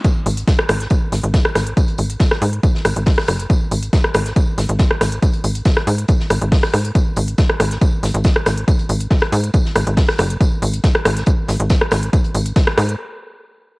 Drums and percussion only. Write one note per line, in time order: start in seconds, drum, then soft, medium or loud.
0.04 kick loud
0.04 closed hi-hat medium
0.04 tambourine medium
0.26 open hi-hat loud
0.26 tambourine medium
0.37 closed hi-hat medium
0.37 closed hi-hat soft
0.48 kick loud
0.48 snare loud
0.48 closed hi-hat medium
0.48 tambourine medium
0.59 cross-stick medium
0.69 cross-stick loud
0.69 open hi-hat loud
0.69 tambourine medium
0.80 snare soft
0.80 closed hi-hat medium
0.90 kick loud
0.90 closed hi-hat medium
0.90 tambourine medium
1.12 snare soft
1.12 open hi-hat loud
1.12 tambourine medium
1.24 closed hi-hat medium
1.34 kick loud
1.34 snare loud
1.34 closed hi-hat medium
1.34 tambourine medium
1.45 cross-stick medium
1.56 cross-stick medium
1.56 snare soft
1.56 open hi-hat loud
1.56 tambourine medium
1.67 closed hi-hat medium
1.77 kick loud
1.77 closed hi-hat medium
1.77 tambourine medium
1.88 closed hi-hat soft
1.98 open hi-hat loud
1.98 tambourine medium
2.10 closed hi-hat medium
2.10 closed hi-hat soft
2.20 kick loud
2.20 snare loud
2.20 closed hi-hat medium
2.20 tambourine medium
2.31 cross-stick medium
2.31 snare soft
2.42 open hi-hat loud
2.42 tambourine medium
2.53 closed hi-hat medium
2.63 kick loud
2.63 closed hi-hat medium
2.63 tambourine medium
2.75 snare medium
2.85 cross-stick medium
2.85 open hi-hat loud
2.85 tambourine medium
2.96 closed hi-hat medium
3.06 kick loud
3.06 snare loud
3.06 closed hi-hat medium
3.06 open hi-hat medium
3.18 cross-stick medium
3.18 snare soft
3.28 cross-stick medium
3.28 open hi-hat loud
3.28 tambourine medium
3.39 closed hi-hat medium
3.39 closed hi-hat soft
3.50 kick loud
3.50 closed hi-hat medium
3.50 tambourine medium
3.71 open hi-hat loud
3.71 tambourine medium
3.82 closed hi-hat soft
3.82 closed hi-hat medium
3.93 kick loud
3.93 snare loud
3.93 closed hi-hat medium
3.93 tambourine medium
4.04 cross-stick medium
4.14 cross-stick loud
4.14 open hi-hat loud
4.14 tambourine medium
4.26 snare soft
4.26 closed hi-hat medium
4.36 kick loud
4.36 closed hi-hat medium
4.36 tambourine medium
4.57 snare medium
4.57 open hi-hat loud
4.57 tambourine medium
4.69 closed hi-hat medium
4.79 kick loud
4.79 snare loud
4.79 closed hi-hat medium
4.79 tambourine medium
4.91 cross-stick medium
5.01 cross-stick medium
5.01 snare soft
5.01 open hi-hat loud
5.01 tambourine medium
5.12 closed hi-hat medium
5.22 kick loud
5.22 closed hi-hat medium
5.22 tambourine medium
5.33 closed hi-hat soft
5.44 open hi-hat loud
5.44 tambourine medium
5.55 closed hi-hat soft
5.55 closed hi-hat medium
5.65 kick loud
5.65 snare loud
5.65 closed hi-hat medium
5.65 tambourine medium
5.77 cross-stick medium
5.77 snare soft
5.87 open hi-hat loud
5.87 tambourine medium
5.98 closed hi-hat medium
6.08 kick loud
6.08 closed hi-hat medium
6.08 tambourine medium
6.20 snare soft
6.30 cross-stick medium
6.30 open hi-hat loud
6.30 tambourine medium
6.42 closed hi-hat medium
6.52 kick loud
6.52 snare loud
6.52 closed hi-hat medium
6.52 open hi-hat medium
6.63 cross-stick medium
6.63 snare soft
6.74 cross-stick medium
6.74 open hi-hat loud
6.74 tambourine medium
6.84 closed hi-hat soft
6.84 closed hi-hat medium
6.95 kick loud
6.95 closed hi-hat medium
6.95 tambourine medium
7.16 open hi-hat loud
7.16 tambourine medium
7.28 closed hi-hat soft
7.28 closed hi-hat medium
7.38 kick loud
7.38 snare loud
7.38 closed hi-hat medium
7.38 tambourine medium
7.50 cross-stick medium
7.60 cross-stick medium
7.60 open hi-hat loud
7.60 tambourine medium
7.71 snare soft
7.71 closed hi-hat medium
7.81 kick loud
7.81 closed hi-hat medium
7.81 tambourine medium
8.03 snare soft
8.03 open hi-hat loud
8.03 tambourine medium
8.14 closed hi-hat medium
8.24 kick loud
8.24 snare loud
8.24 closed hi-hat medium
8.24 tambourine medium
8.36 cross-stick medium
8.46 cross-stick medium
8.46 snare soft
8.46 open hi-hat loud
8.46 tambourine medium
8.57 closed hi-hat medium
8.68 kick loud
8.68 closed hi-hat medium
8.68 tambourine medium
8.79 closed hi-hat soft
8.89 open hi-hat loud
8.89 tambourine medium
9.00 closed hi-hat soft
9.00 closed hi-hat medium
9.11 kick loud
9.11 snare loud
9.11 closed hi-hat medium
9.11 tambourine medium
9.22 cross-stick medium
9.22 snare soft
9.33 open hi-hat loud
9.33 tambourine medium
9.44 closed hi-hat medium
9.54 kick loud
9.54 closed hi-hat medium
9.54 tambourine medium
9.65 snare medium
9.75 cross-stick medium
9.75 open hi-hat loud
9.75 tambourine medium
9.87 closed hi-hat medium
9.97 kick loud
9.97 snare loud
9.97 closed hi-hat medium
9.97 open hi-hat medium
10.08 cross-stick medium
10.08 snare soft
10.18 cross-stick medium
10.18 open hi-hat loud
10.18 tambourine medium
10.30 closed hi-hat soft
10.30 closed hi-hat medium
10.40 kick loud
10.40 closed hi-hat medium
10.40 tambourine medium
10.62 open hi-hat loud
10.62 tambourine medium
10.73 closed hi-hat medium
10.73 closed hi-hat soft
10.83 kick loud
10.83 snare loud
10.83 closed hi-hat medium
10.83 tambourine medium
10.95 cross-stick medium
11.05 cross-stick loud
11.05 open hi-hat loud
11.05 tambourine medium
11.16 snare soft
11.16 closed hi-hat medium
11.26 kick loud
11.26 closed hi-hat medium
11.26 tambourine medium
11.47 snare medium
11.47 open hi-hat loud
11.47 tambourine medium
11.60 closed hi-hat medium
11.69 kick loud
11.69 snare loud
11.69 closed hi-hat medium
11.69 tambourine medium
11.81 cross-stick medium
11.91 cross-stick medium
11.91 snare soft
11.91 open hi-hat loud
11.91 tambourine medium
12.03 closed hi-hat medium
12.13 kick loud
12.13 closed hi-hat medium
12.13 tambourine medium
12.24 closed hi-hat soft
12.35 open hi-hat loud
12.35 tambourine medium
12.46 closed hi-hat soft
12.46 closed hi-hat medium
12.56 kick loud
12.56 snare loud
12.56 closed hi-hat medium
12.56 tambourine medium
12.67 cross-stick loud
12.67 snare soft
12.78 cross-stick loud
12.78 open hi-hat loud
12.78 tambourine medium
12.89 closed hi-hat medium